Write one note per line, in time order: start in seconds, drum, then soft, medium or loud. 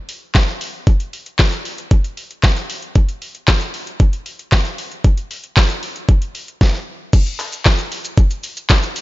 0.09 open hi-hat medium
0.35 kick loud
0.35 snare medium
0.35 clap loud
0.61 open hi-hat medium
0.87 kick loud
0.87 closed hi-hat medium
1.00 closed hi-hat medium
1.13 open hi-hat medium
1.26 closed hi-hat medium
1.39 kick loud
1.39 snare medium
1.39 clap loud
1.39 closed hi-hat medium
1.52 closed hi-hat medium
1.65 open hi-hat medium
1.78 closed hi-hat medium
1.91 kick loud
1.91 closed hi-hat medium
2.04 closed hi-hat medium
2.17 open hi-hat medium
2.31 closed hi-hat medium
2.43 kick loud
2.43 snare medium
2.43 clap loud
2.43 closed hi-hat medium
2.56 closed hi-hat medium
2.70 open hi-hat medium
2.82 closed hi-hat soft
2.95 kick loud
2.95 closed hi-hat medium
3.09 closed hi-hat medium
3.22 open hi-hat medium
3.35 closed hi-hat medium
3.48 kick loud
3.48 snare medium
3.48 clap loud
3.48 closed hi-hat medium
3.61 closed hi-hat medium
3.74 open hi-hat medium
3.87 closed hi-hat medium
4.00 kick loud
4.00 closed hi-hat medium
4.13 closed hi-hat medium
4.26 open hi-hat medium
4.39 closed hi-hat medium
4.52 kick loud
4.52 snare medium
4.52 clap loud
4.52 closed hi-hat medium
4.65 closed hi-hat medium
4.78 open hi-hat medium
4.91 closed hi-hat medium
5.04 kick loud
5.04 closed hi-hat medium
5.17 closed hi-hat medium
5.31 open hi-hat medium
5.44 closed hi-hat medium
5.57 kick loud
5.57 snare medium
5.57 clap loud
5.57 closed hi-hat medium
5.70 closed hi-hat medium
5.83 open hi-hat medium
5.96 closed hi-hat medium
6.09 kick loud
6.09 closed hi-hat medium
6.22 closed hi-hat medium
6.35 open hi-hat medium
6.48 closed hi-hat medium
6.61 kick loud
6.61 snare medium
7.13 kick loud
7.13 crash loud
7.13 shaker medium
7.26 closed hi-hat medium
7.26 shaker medium
7.39 clap medium
7.39 open hi-hat medium
7.39 shaker medium
7.52 closed hi-hat medium
7.52 shaker medium
7.65 kick loud
7.65 snare medium
7.65 clap loud
7.65 clap medium
7.65 shaker medium
7.79 closed hi-hat medium
7.79 shaker medium
7.92 open hi-hat medium
7.92 shaker medium
8.05 closed hi-hat medium
8.05 shaker medium
8.18 kick loud
8.18 shaker medium
8.31 closed hi-hat medium
8.31 shaker medium
8.44 open hi-hat medium
8.44 shaker medium
8.57 closed hi-hat medium
8.57 shaker medium
8.70 kick loud
8.70 snare medium
8.70 clap loud
8.70 clap medium
8.70 shaker medium
8.83 closed hi-hat medium
8.83 shaker medium
8.96 open hi-hat medium
8.96 shaker medium